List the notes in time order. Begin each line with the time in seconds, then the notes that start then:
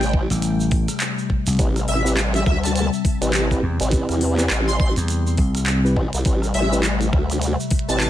Already playing: A1 C3 G3 A3 G5
0.01 closed hi-hat, cabasa
0.03 closed hi-hat
0.07 closed hi-hat
0.09 closed hi-hat
0.11 kick, closed hi-hat
0.30 A1, closed hi-hat, cabasa
0.42 closed hi-hat, cabasa
0.60 cabasa
0.71 kick, open hi-hat
0.88 cross-stick, closed hi-hat, cabasa
1.00 clap, closed hi-hat, cabasa
1.18 cabasa
1.30 kick
1.47 C2, closed hi-hat, cabasa
1.49 closed hi-hat
1.53 closed hi-hat
1.55 closed hi-hat
1.57 A1, kick, closed hi-hat
1.59 C4 E4 G4 B4, closed hi-hat, cabasa
1.76 cross-stick, closed hi-hat, cabasa
1.88 A1 E5, open hi-hat
2.05 C4 E4 G4 B4, cabasa
2.17 clap, closed hi-hat, cabasa
2.34 E5, closed hi-hat, cabasa
2.46 D2 E5, kick, cross-stick
2.64 A5, closed hi-hat, cabasa
2.76 A5, closed hi-hat, cabasa
2.93 cabasa
3.05 kick, open hi-hat
3.21 A1 C4 E4 G4 B4, closed hi-hat, cabasa
3.33 clap, closed hi-hat, cabasa
3.51 C4 E4 G4 B4, kick, cabasa
3.63 E2
3.80 A1, closed hi-hat, cabasa
3.91 C4 E4 G4 B4, kick, closed hi-hat, cabasa
4.09 E2, cross-stick, closed hi-hat, cabasa
4.21 open hi-hat
4.38 C4 E4 G4 B4, clap, cabasa
4.50 A1, clap, closed hi-hat, cabasa
4.68 C6, cabasa
4.80 C6, kick
4.96 E2, closed hi-hat, cabasa
5.08 closed hi-hat, cabasa
5.27 cabasa
5.37 C2, kick, open hi-hat
5.55 cross-stick, closed hi-hat, cabasa
5.66 clap, closed hi-hat, cabasa
5.85 C4 E4 G4 B4, cabasa
5.96 A1, kick
6.13 C2, closed hi-hat, cabasa
6.25 A1 A3 C4 E4 G4 B4, kick, closed hi-hat, cabasa
6.42 cross-stick, cabasa
6.54 A1 E5, open hi-hat
6.72 C4 E4 G4 B4, cabasa
6.83 clap, closed hi-hat, cabasa
7.01 closed hi-hat, cabasa
7.13 D2, kick, cross-stick
7.30 closed hi-hat, cabasa
7.42 closed hi-hat, cabasa
7.60 cabasa
7.71 kick, open hi-hat
7.79 closed hi-hat
7.88 A1 C4 E4 G4 B4 A5, cabasa
8.00 A5, clap, closed hi-hat, cabasa